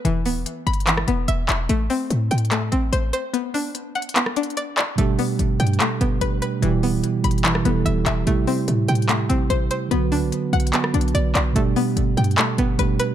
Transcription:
0.05 808-style bass E1, synth pluck E3, closed hi-hat
0.26 808-style bass D1, synth pluck B3, open hi-hat
0.36 808-style bass E1
0.46 closed hi-hat
0.67 808-style bass G1, synth pluck B5, closed hi-hat
0.73 closed hi-hat
0.80 closed hi-hat
0.87 synth pluck E3, clap, closed hi-hat
0.97 cross-stick
1.08 808-style bass E1, synth pluck B3, closed hi-hat
1.28 808-style bass E1, synth pluck E5, closed hi-hat
1.49 808-style bass E1, synth pluck E5, clap, closed hi-hat
1.69 808-style bass A1, synth pluck A3, closed hi-hat
1.90 synth pluck C4, open hi-hat
2.10 808-style bass A2, closed hi-hat
2.31 808-style bass A2, synth pluck G5, closed hi-hat
2.38 closed hi-hat
2.45 closed hi-hat
2.51 synth pluck A3, clap, closed hi-hat
2.72 808-style bass A1, synth pluck C4, closed hi-hat
2.92 808-style bass A1, synth pluck C5, closed hi-hat
3.13 synth pluck C5, closed hi-hat
3.33 synth pluck B3, closed hi-hat
3.54 synth pluck D4, open hi-hat
3.75 closed hi-hat
3.95 synth pluck F#5, closed hi-hat
4.02 closed hi-hat
4.09 closed hi-hat
4.16 synth pluck B3, clap, closed hi-hat
4.26 cross-stick
4.36 synth pluck D4, closed hi-hat
4.43 closed hi-hat
4.50 closed hi-hat
4.57 synth pluck D5, closed hi-hat
4.77 synth pluck D5, clap, closed hi-hat
4.96 808-style bass G1, tine electric piano B2 G3 A3 D4, synth pluck A3, closed hi-hat
5.00 tine electric piano G4
5.19 synth pluck B3, open hi-hat
5.39 808-style bass G1, closed hi-hat
5.60 808-style bass G2, synth pluck G5, closed hi-hat
5.67 closed hi-hat
5.73 closed hi-hat
5.80 synth pluck A3, clap, closed hi-hat
6.01 808-style bass G1, synth pluck B3, closed hi-hat
6.20 808-style bass G1, tine electric piano B2 G3 A3 D4 G4, synth pluck B4, closed hi-hat
6.42 synth pluck B4, closed hi-hat
6.60 808-style bass E1, tine electric piano B2 E3 G3 E4, synth pluck E3, closed hi-hat
6.65 tine electric piano G4
6.83 808-style bass D1, synth pluck B3, open hi-hat
6.93 808-style bass E1
7.04 closed hi-hat
7.24 808-style bass G1, synth pluck B5, closed hi-hat
7.31 closed hi-hat
7.38 closed hi-hat
7.45 synth pluck E3, clap, closed hi-hat
7.55 cross-stick
7.64 808-style bass E1, tine electric piano B2 E3 G3 E4 A4, synth pluck B3, closed hi-hat
7.86 808-style bass E1, synth pluck E5, closed hi-hat
8.06 808-style bass E1, synth pluck E5, clap, closed hi-hat
8.25 808-style bass A1, tine electric piano C3 G3 A3 E4, synth pluck A3, closed hi-hat
8.29 tine electric piano G4
8.47 synth pluck C4, open hi-hat
8.68 808-style bass A2, closed hi-hat
8.88 808-style bass A2, synth pluck G5, closed hi-hat
8.95 closed hi-hat
9.02 closed hi-hat
9.09 synth pluck A3, clap, closed hi-hat
9.29 808-style bass A1, synth pluck C4, closed hi-hat
9.50 808-style bass A1, synth pluck C5, closed hi-hat
9.71 synth pluck C5, closed hi-hat
9.89 808-style bass B1, tine electric piano D3 F#3 B3 F#4, synth pluck B3, closed hi-hat
9.93 tine electric piano B4
10.12 808-style bass D2, synth pluck D4, open hi-hat
10.22 808-style bass B1
10.32 closed hi-hat
10.53 808-style bass B1, synth pluck F#5, closed hi-hat
10.60 closed hi-hat
10.67 closed hi-hat
10.73 synth pluck B3, clap, closed hi-hat
10.84 cross-stick
10.94 808-style bass B1, synth pluck D4, closed hi-hat
11.01 closed hi-hat
11.08 closed hi-hat
11.14 808-style bass B1, synth pluck D5, closed hi-hat
11.35 808-style bass B1, synth pluck D5, clap, closed hi-hat
11.53 808-style bass G1, tine electric piano B2 G3 A3 D4, synth pluck A3, closed hi-hat
11.58 tine electric piano G4
11.76 synth pluck B3, open hi-hat
11.97 808-style bass G1, closed hi-hat
12.17 808-style bass G2, synth pluck G5, closed hi-hat
12.24 closed hi-hat
12.31 closed hi-hat
12.38 synth pluck A3, clap, closed hi-hat
12.58 808-style bass G1, synth pluck B3, closed hi-hat
12.78 808-style bass G1, tine electric piano B2 G3 A3 D4 G4, synth pluck B4, closed hi-hat
13.00 synth pluck B4, closed hi-hat

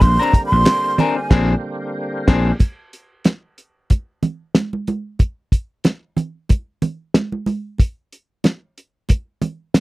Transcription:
Already playing: tonewheel organ D3 A#3 C4
0.01 slap bass A#1, tonewheel organ G3, flute C6, muted clean electric guitar stroke, kick, closed hi-hat, muted conga
0.19 clean electric guitar C4 D4 A#4, flute A#5
0.33 muted clean electric guitar stroke, kick, closed hi-hat
0.46 flute C6
0.52 slap bass A#1, muted clean electric guitar stroke
0.65 snare, clap, closed hi-hat, high conga
0.84 muted clean electric guitar stroke
0.98 clean electric guitar C4 D4 A#4, flute G#5, closed hi-hat, low conga
1.17 muted clean electric guitar stroke
1.30 slap bass A#1, clean electric guitar C4 D4 G#4, kick, snare, crash
2.28 slap bass A#1, clean electric guitar C4 D4 G#4, kick, snare, crash
2.59 kick, closed hi-hat, muted conga
2.93 closed hi-hat
3.24 snare, closed hi-hat, high conga
3.58 closed hi-hat
3.90 kick, closed hi-hat, muted conga
4.23 closed hi-hat, muted conga, low conga
4.55 snare, closed hi-hat, high conga
4.73 high conga
4.87 closed hi-hat, high conga
5.19 kick, closed hi-hat, muted conga
5.52 kick, closed hi-hat
5.84 snare, closed hi-hat, high conga
6.17 closed hi-hat, low conga
6.49 kick, closed hi-hat, muted conga
6.82 closed hi-hat, muted conga, low conga
7.14 snare, closed hi-hat, high conga
7.32 high conga
7.46 closed hi-hat, high conga
7.78 kick, closed hi-hat, muted conga
8.13 closed hi-hat
8.44 snare, closed hi-hat, high conga
8.78 closed hi-hat
9.09 kick, closed hi-hat, muted conga
9.42 closed hi-hat, muted conga, low conga
9.74 snare, closed hi-hat, high conga

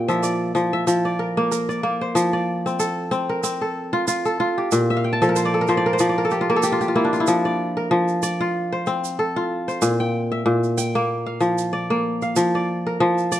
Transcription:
Already playing: kora A#2 C4 F4 G4 G5
0.08 kora F3 E5, shaker
0.23 kora D5, shaker
0.55 kora F3, shaker
0.73 kora E5
0.87 kora F3, shaker
1.05 kora D5
1.19 kora A#4
1.37 kora A#3
1.51 kora A#4, shaker
1.69 kora D5, shaker
1.83 kora A#3
2.01 kora C5
2.15 kora F3, shaker
2.33 kora D5
2.66 kora C4, shaker
2.79 kora A4, shaker
3.11 kora C4, shaker
3.29 kora A#4
3.43 kora C4, shaker
3.61 kora A4
3.93 kora F4
4.08 kora F4, shaker
4.25 kora A4, shaker
4.40 kora F4
4.58 kora G4
4.72 kora A#2, shaker
4.90 kora E5
4.97 kora F5
5.04 kora G5
5.13 kora A5
5.22 kora F3 A4, shaker
5.29 kora A#4
5.36 kora C5, shaker
5.45 kora D5
5.54 kora A4
5.61 kora A#4
5.67 kora F3 C5, shaker
5.77 kora D5
5.86 kora A#4
5.93 kora C5
5.99 kora F3 D5, shaker
6.09 kora D5
6.18 kora A#4
6.25 kora A4
6.30 kora G4, shaker
6.41 kora F4
6.50 kora A#3 A#4
6.56 kora A4
6.63 kora G4, shaker
6.72 kora F4
6.81 kora G4, shaker
6.88 kora F4
6.95 kora A#3 E4
7.05 kora D4
7.13 kora F4, shaker
7.20 kora E4
7.27 kora F3, shaker
7.45 kora D5
7.77 kora A#4
7.91 kora F3
8.08 shaker
8.23 kora D5, shaker
8.41 kora F4
8.72 kora C5
8.86 kora C4, shaker
9.04 shaker
9.19 kora A4
9.36 kora F4
9.68 kora C5, shaker
9.82 kora A#2, shaker
10.00 kora G5
10.32 kora E5
10.46 kora A#2
10.64 shaker
10.78 kora G5, shaker
10.95 kora A#3
11.26 kora F5
11.40 kora F3, shaker
11.58 shaker
11.73 kora D5
11.90 kora A#3
12.22 kora F5, shaker
12.36 kora F3, shaker
12.55 kora D5
12.87 kora A#4
13.00 kora F3
13.18 shaker
13.32 kora D5, shaker

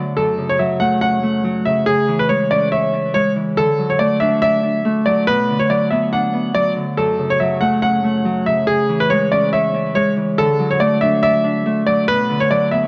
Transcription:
Already playing: harp D3 A3 B3 D4
0.17 harp F#2, grand piano A4
0.38 harp C#3
0.49 grand piano C#5
0.59 harp F#3, grand piano E5
0.80 harp A3, grand piano F#5
1.01 harp C#4, grand piano F#5
1.23 harp A3
1.44 harp F#3
1.65 harp C#3, grand piano E5
1.86 harp C#3, grand piano G#4
2.08 harp E3
2.19 grand piano B4
2.29 harp G#3, grand piano C#5
2.50 harp C#4, grand piano D5
2.72 harp C#5, grand piano E5
2.93 harp C#4
3.14 harp G#3, grand piano C#5
3.36 harp E3
3.57 harp D3, grand piano A4
3.78 harp F#3
3.90 grand piano C#5
3.99 harp A3, grand piano D5
4.20 harp D4, grand piano E5
4.42 harp D5, grand piano E5
4.63 harp D4
4.85 harp A3
5.06 harp F#3, grand piano D5
5.27 harp B2, grand piano B4
5.48 harp D3
5.59 grand piano C#5
5.70 harp F#3, grand piano D5
5.90 harp B3, grand piano E5
6.13 harp D4, grand piano F#5
6.33 harp B3
6.54 harp F#3, grand piano D5
6.76 harp D3
6.97 harp F#2, grand piano A4
7.19 harp C#3
7.30 grand piano C#5
7.40 harp F#3, grand piano E5
7.61 harp A3, grand piano F#5
7.82 harp C#4, grand piano F#5
8.04 harp A3
8.25 harp F#3
8.46 harp C#3, grand piano E5
8.67 harp C#3, grand piano G#4
8.89 harp E3
9.00 grand piano B4
9.10 harp G#3, grand piano C#5
9.31 harp C#4, grand piano D5
9.53 harp C#5, grand piano E5
9.74 harp C#4
9.95 harp G#3, grand piano C#5
10.17 harp E3
10.38 harp D3, grand piano A4
10.59 harp F#3
10.71 grand piano C#5
10.80 harp A3, grand piano D5
11.01 harp D4, grand piano E5
11.23 harp D5, grand piano E5
11.44 harp D4
11.66 harp A3
11.87 harp F#3, grand piano D5
12.08 harp B2, grand piano B4
12.29 harp D3
12.40 grand piano C#5
12.51 harp F#3, grand piano D5
12.71 harp B3, grand piano E5

